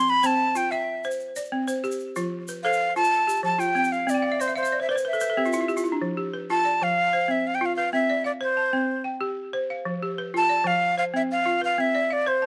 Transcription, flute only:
0.00 0.11 C6 loud
0.10 0.28 B5 medium
0.26 0.58 A5 medium
0.57 0.73 G5 medium
0.71 1.08 E5 medium
2.63 2.94 F5 loud
2.96 3.41 A5 loud
3.44 3.61 A5 medium
3.60 3.94 G5 loud
3.92 4.11 F5 medium
4.10 4.42 D5 medium
4.41 4.56 C5 medium
4.57 4.80 C5 medium
4.82 4.89 E5 medium
4.90 4.96 D5 medium
5.07 5.83 E5 medium
6.50 6.85 A5 loud
6.83 7.33 F5 loud
7.31 7.49 E5 medium
7.47 7.56 F5 medium
7.55 7.67 G5 medium
7.66 7.76 F5 medium
7.76 7.92 F5 medium
7.93 8.23 E5 medium
8.26 8.32 D5 medium
8.43 9.03 C5 medium
10.37 10.68 A5 loud
10.67 10.98 F5 loud
10.98 11.04 F5 medium
11.16 11.22 E5 medium
11.31 11.61 F5 medium
11.65 11.82 F5 medium
11.80 12.14 E5 medium
12.13 12.29 D5 medium
12.28 12.46 C5 medium

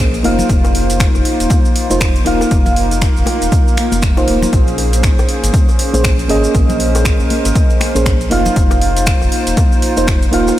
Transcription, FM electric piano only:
0.00 0.11 A#3 medium
0.00 0.12 C#4 medium
0.00 0.12 G#4 medium
0.00 0.12 C5 medium
0.23 1.86 A#3 medium
0.23 1.87 D#4 medium
0.23 1.87 F4 medium
0.23 1.87 F5 loud
1.90 2.13 A#3 medium
1.90 2.13 D#4 medium
1.90 2.13 F4 medium
1.90 2.14 C5 medium
2.25 3.88 A#3 loud
2.25 3.88 D#4 medium
2.25 3.89 F4 medium
2.25 3.89 F5 loud
4.17 4.51 A#3 loud
4.17 4.52 D#4 medium
4.17 4.52 F4 medium
4.17 4.52 C5 loud
5.93 6.16 A#3 medium
5.93 6.17 C#4 medium
5.93 6.17 G#4 medium
5.93 6.17 C5 medium
6.28 7.91 A#3 medium
6.28 7.92 C#4 medium
6.28 7.92 G#4 medium
6.28 7.93 D#5 loud
7.95 8.18 A#3 medium
7.95 8.18 C#4 medium
7.95 8.19 G#4 medium
7.95 8.19 C5 medium
8.30 9.93 A#3 medium
8.30 9.93 D#4 medium
8.30 9.94 F4 medium
8.30 9.94 F5 loud
9.97 10.20 A#3 medium
9.97 10.20 D#4 medium
9.97 10.20 F4 medium
9.97 10.20 C5 medium
10.32 10.59 A#3 medium
10.32 10.59 D#4 medium
10.32 10.59 F4 medium
10.32 10.59 F5 loud

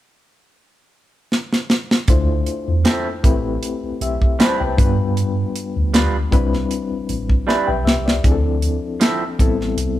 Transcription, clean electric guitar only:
2.85 3.07 F3 medium
2.85 3.07 C4 medium
2.85 3.07 E4 medium
2.85 3.08 A4 medium
4.39 4.61 G3 medium
4.39 4.61 C4 medium
4.39 4.61 E4 medium
4.39 4.62 B4 medium
5.94 6.15 G3 medium
5.94 6.15 D4 medium
5.94 6.16 F4 medium
5.94 6.16 B4 medium
7.47 7.69 G3 medium
7.47 7.69 D4 medium
7.47 7.69 E4 medium
7.47 7.69 B4 medium
9.00 9.22 F3 medium
9.00 9.23 C4 medium
9.00 9.23 E4 medium
9.00 9.23 A4 medium

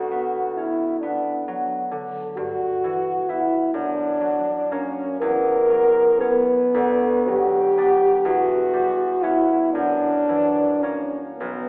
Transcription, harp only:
0.00 2.41 D2 soft
0.00 1.47 F#3 soft
0.11 1.02 B3 soft
0.57 1.35 C#4 soft
1.03 3.28 B3 soft
1.48 2.42 F#3 soft
1.91 2.41 D3 soft
2.37 3.78 G2 soft
2.84 3.79 E3 soft
3.29 3.78 B3 soft
3.29 3.78 E4 soft
3.74 5.26 F#2 soft
4.20 5.69 F#3 soft
4.72 6.79 A#3 soft
4.72 6.19 C#4 soft
5.21 6.79 E2 soft
5.70 7.27 F#3 soft
6.21 6.79 C#4 soft
6.74 8.30 D2 medium
7.28 8.30 F#3 soft
7.78 9.22 B3 soft
7.78 8.30 D4 soft
8.25 9.78 E2 medium
8.73 9.78 G3 soft
9.23 9.79 B3 soft
9.23 10.82 C#4 soft
9.75 11.45 F#2 soft
10.29 11.45 E3 soft
10.83 11.45 A#3 soft
10.83 11.45 C#4 soft
11.40 11.69 B1 soft

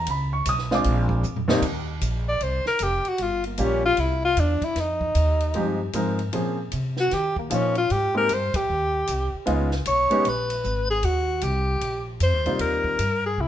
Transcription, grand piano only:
0.10 0.33 B5 medium
0.33 0.46 C#6 medium
0.49 0.72 D#6 loud
0.71 1.21 G#3 medium
0.71 1.21 C4 medium
0.71 1.22 D4 medium
0.71 1.22 F4 medium
0.71 1.54 D6 medium
1.48 1.61 D#2 medium
1.48 1.61 G3 medium
1.48 1.61 A#3 medium
1.48 1.61 C4 medium
1.48 1.62 D#4 loud
3.58 3.81 G3 medium
3.58 3.81 A#3 medium
3.58 3.81 C#4 medium
3.58 3.82 F4 medium
3.58 3.82 G4 medium
5.55 5.77 F3 medium
5.55 5.77 G#3 medium
5.55 5.78 C4 medium
5.55 5.78 D#4 medium
5.55 5.78 G4 medium
5.94 6.17 F3 medium
5.94 6.17 G#3 medium
5.94 6.17 C4 medium
5.94 6.17 D#4 medium
5.94 6.17 A#4 medium
6.33 6.56 F3 medium
6.33 6.56 A#3 medium
6.33 6.56 C4 medium
6.33 6.56 C#4 soft
6.33 6.56 G#4 medium
7.50 7.73 F3 medium
7.50 7.73 A#3 medium
7.50 7.73 C#4 medium
7.50 7.73 D#4 medium
7.50 7.74 F4 medium
8.14 8.27 G#3 medium
8.14 8.27 A#3 medium
8.14 8.28 C4 medium
8.14 8.28 D#4 medium
8.14 8.28 G4 medium
9.46 9.69 G#3 medium
9.46 9.69 B3 medium
9.46 9.69 C#4 medium
9.46 9.69 D#4 medium
9.46 9.69 F4 medium
10.10 10.23 G#3 medium
10.10 10.23 B3 medium
10.10 10.23 C#4 medium
10.10 10.24 D#4 medium
10.10 10.24 G4 medium
12.46 12.96 G3 medium
12.46 12.96 A#3 medium
12.46 12.96 C4 medium
12.46 12.96 D#4 medium
12.46 12.97 F4 medium

